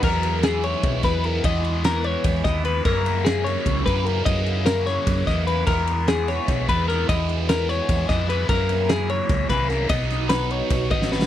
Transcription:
<<
  \new Staff \with { instrumentName = "Clean electric guitar" } { \time 7/8 \key e \lydian \tempo 4 = 149 ais'4 gis'8 cis''4 b'8 ais'8 | dis''4 ais'8 cis''4 dis''8 b'8 | ais'4 gis'8 cis''4 b'8 ais'8 | dis''4 ais'8 cis''4 dis''8 b'8 |
ais'4 gis'8 cis''4 b'8 ais'8 | dis''4 ais'8 cis''4 dis''8 b'8 | ais'4 gis'8 cis''4 b'8 ais'8 | dis''4 b'8 cis''4 dis''8 b'8 | }
  \new Staff \with { instrumentName = "Overdriven electric guitar" } { \clef bass \time 7/8 \key e \lydian <e gis b e'>2~ <e gis b e'>8 <e gis b e'>8 <e gis b e'>8 | <e gis b e'>2~ <e gis b e'>8 <e gis b e'>8 <e gis b e'>8 | <fis, cis e ais e'>2~ <fis, cis e ais e'>8 <fis, cis e ais e'>8 <fis, cis e ais e'>8 | <fis, cis e ais e'>2~ <fis, cis e ais e'>8 <fis, cis e ais e'>8 <fis, cis e ais e'>8 |
<e gis b e'>2~ <e gis b e'>8 <e gis b e'>8 <e gis b e'>8 | <e gis b e'>2~ <e gis b e'>8 <e gis b e'>8 <e gis b e'>8 | <fis, cis e ais e'>2~ <fis, cis e ais e'>8 <fis, cis e ais e'>8 <fis, cis e ais e'>8 | <b, fis b dis'>2~ <b, fis b dis'>8 <b, fis b dis'>8 <b, fis b dis'>8 | }
  \new Staff \with { instrumentName = "Clean electric guitar" } { \clef bass \time 7/8 \key e \lydian fis2.~ fis8 | r2. r8 | r2. r8 | r2. r8 |
r2. r8 | r2. r8 | r2. r8 | r2. r8 | }
  \new Staff \with { instrumentName = "Fingered electric bass" } { \clef bass \time 7/8 \key e \lydian e,2 b,,8 e,4 | e,2 e,8 dis,4 | fis,2 cis,8 fis,4 | fis,2 fis,8 e,4 |
e,2 b,,8 e,4 | e,2 e,8 eis,4 | fis,2 cis,8 c,4 | b,,2 b,,8 gis,,4 | }
  \new DrumStaff \with { instrumentName = "Drums" } \drummode { \time 7/8 <cymc bd>8 cymr8 <cymr sn>8 cymr8 <bd cymr>8 <bd cymr sn>8 cymr8 | <bd cymr>8 cymr8 <cymr sn>8 cymr8 <bd cymr>8 <bd cymr sn>8 cymr8 | <cymc bd>8 cymr8 <cymr sn>8 <cymr sn>8 <bd cymr>8 <bd cymr>8 cymr8 | <bd cymr>8 cymr8 <cymr sn>8 <cymr sn>8 <bd cymr>8 <bd cymr sn>8 cymr8 |
<cymc bd>8 cymr8 <cymr sn>8 <cymr sn>8 <bd cymr sn>8 <bd cymr>8 <cymr sn>8 | <bd cymr>8 cymr8 <cymr sn>8 <cymr sn>8 <bd cymr>8 <bd cymr sn>8 cymr8 | <cymc bd>8 cymr8 <cymr sn>8 cymr8 <bd cymr sn>8 <bd cymr sn>8 <cymr sn>8 | <bd cymr>8 <cymr sn>8 <cymr sn>8 cymr8 <bd cymr>8 <bd cymr>16 sn16 sn16 sn16 | }
>>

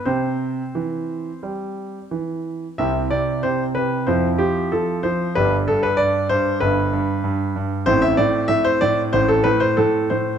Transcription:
<<
  \new Staff \with { instrumentName = "Grand piano" } { \time 4/4 \key c \major \tempo 4 = 93 << { c''2.~ c''8 r8 | e''8 d''8 c''8 b'8 c''8 g'8 a'8 c''8 | b'8 a'16 b'16 d''8 c''8 b'4. r8 | c''16 e''16 d''8 e''16 c''16 d''8 c''16 a'16 b'16 c''16 a'8 c''8 | } \\ { c'1 | <c' e'>2 <c' e'>2 | <d' g'>1 | <c' e'>1 | } >> }
  \new Staff \with { instrumentName = "Grand piano" } { \clef bass \time 4/4 \key c \major c4 e4 g4 e4 | <c, c>8 c8 c8 c8 <f, f>8 f8 f8 f8 | <g,, g,>8 g,8 g,8 g,8 <g,, g,>8 g,8 g,8 g,8 | <a,, a,>8 a,8 a,8 a,8 <a,, a,>8 a,8 a,8 a,8 | }
>>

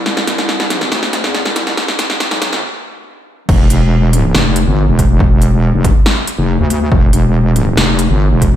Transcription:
<<
  \new Staff \with { instrumentName = "Wobble bass" } { \clef bass \time 4/4 \key e \phrygian \tempo 4 = 140 c,8 c,4. d,8. e,8 c,8. | r4 r16 b,,8 g,,16 r2 | e,,8 e,,4. f,,8. g,,8 e,,8.~ | e,,4~ e,,16 f,,8 r4 f,,8 d,8. |
e,,8 e,,4. f,,8. g,,8 e,,8. | }
  \new DrumStaff \with { instrumentName = "Drums" } \drummode { \time 4/4 sn16 sn16 <hh sn>16 sn16 sn16 sn16 <hh sn>16 sn16 sn16 sn16 <hh sn>16 sn16 sn16 sn16 <hh sn>16 sn16 | sn16 sn16 <hh sn>16 sn16 <hh sn>16 sn16 <hh sn>16 sn16 r4 r4 | <cymc bd>8 hh8 r8 hh8 sn8 hh8 r8 <hh bd>8 | bd8 hh8 r8 <hh bd>8 sn8 hh8 r8 hh8 |
bd8 hh8 r8 hh8 sn8 hh8 r8 <hh bd>8 | }
>>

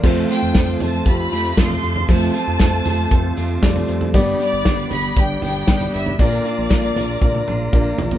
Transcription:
<<
  \new Staff \with { instrumentName = "Violin section" } { \time 4/4 \key f \lydian \tempo 4 = 117 r8 g''4 a''8 b''4 c'''4 | a''2.~ a''8 r8 | r8 d''4 b''8 g''8 g''4 e''8 | d''2.~ d''8 r8 | }
  \new Staff \with { instrumentName = "Tonewheel organ" } { \time 4/4 \key f \lydian << { <f' a' a''>1~ | <f' a' a''>1 | <g' b' b''>1 | <f' bes' bes''>1 | } \\ { c''1~ | c''1 | d''1~ | d''1 | } >> }
  \new Staff \with { instrumentName = "Grand piano" } { \time 4/4 \key f \lydian <a c' f' c''>4 <a c' f' c''>4 <a c' f' g'>4 <a c' f' a'>4 | <a c' f' c''>4 <a c' f' c''>4 <a c' f' a'>4 <g a c' f' d''>4 | <b d' g' d''>4 <b d' g' d''>4 <b d' g' d''>4 <b d' g' d''>4 | <bes d' f' d''>4 <bes d' f' d''>4 <bes d' f' d''>4 <bes d' f' d''>4 | }
  \new Staff \with { instrumentName = "Grand piano" } { \clef bass \time 4/4 \key f \lydian r1 | r1 | g,4. r2 r8 | bes,4. r2 r8 | }
  \new Staff \with { instrumentName = "Steel-string acoustic guitar" } { \time 4/4 \key f \lydian <f, c f a c' f'>8 <f a c' f'>8 <f a c' f'>8 <f a c' f'>4 <f a c' f'>8 <f a c' f'>4 | <f, c f a c' f'>8 <f a c' f'>8 <f a c' f'>8 <f a c' f'>4 <f a c' f'>8 <f a c' f'>4 | <g, d g b d' g'>8 <g b d' g'>8 <g b d' g'>8 <g b d' g'>4 <g b d' g'>8 <g b d' g'>4 | <bes, d bes d' f'>8 <bes d' f'>8 <d bes d' f'>8 <bes d' f'>4 <bes d' f'>8 <d bes d' f'>4 | }
  \new Staff \with { instrumentName = "Analog synth bass" } { \clef bass \time 4/4 \key f \lydian f,8 r16 f,16 f,8 f,8 f,8 f,8 f,8 f,8 | f,8 r16 f,16 f,8 f,8 f,8 f,8 f,8 f,8 | g,,8 r16 g,,16 g,,8 g,,8 g,,8 g,,8 g,,8 g,,8 | bes,,8 r16 bes,,16 bes,,8 bes,,8 bes,,8 bes,,8 bes,,8 bes,,8 | }
  \new DrumStaff \with { instrumentName = "Drums" } \drummode { \time 4/4 <cymc bd>8 <hho hhp>8 <hho hhp bd sn>8 <hho hhp tomfh>8 <hho hhp bd>8 <hho hhp>8 <hho hhp bd sn>16 tomfh16 <hho hhp>16 tomfh16 | <hho hhp bd>8 <hho hhp>8 <hho hhp bd sn>8 <hho hhp tomfh>8 <hho hhp bd>8 <hho hhp>8 <hho hhp bd sn>16 tomfh16 <hho hhp>16 tomfh16 | <hho hhp bd>8 <hho hhp>8 <hho hhp bd sn>8 <hho hhp tomfh>8 <hho hhp bd>8 <hho hhp tomfh>8 <hho hhp bd sn>16 tomfh16 <hho hhp>16 tomfh16 | <hho hhp bd>8 <hho hhp>8 <hho hhp bd sn>8 <hho hhp tomfh>8 <bd tommh>16 tommh16 toml8 bd8 tomfh16 tomfh16 | }
>>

